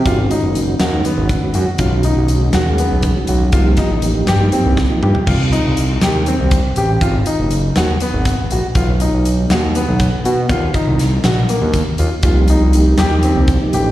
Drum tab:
CC |--------------|--------------|--------------|x-------------|
HH |x-x-x-x-x-x-x-|x-x-x-x-x-x-x-|x-x-x-x-x-----|--x-x-x-x-x-x-|
SD |------o-------|------o-------|--o---o---o---|------o-------|
T2 |--------------|--------------|------------o-|--------------|
FT |--------------|--------------|-------------o|--------------|
BD |o---------o---|o---------o---|o-o-------o---|o---------o---|

CC |--------------|--------------|--------------|--------------|
HH |x-x-x-x-x-x-x-|x-x-x-x-x-x-x-|x-x-x-x-x-x-x-|x-x-x-x-x-x-x-|
SD |------o---o---|------o---o---|----o-o---o---|------o-------|
T2 |--------------|--------------|--------------|--------------|
FT |--------------|--------------|--------------|--------------|
BD |o---------o---|o---------o---|o-o-------o---|o---------o---|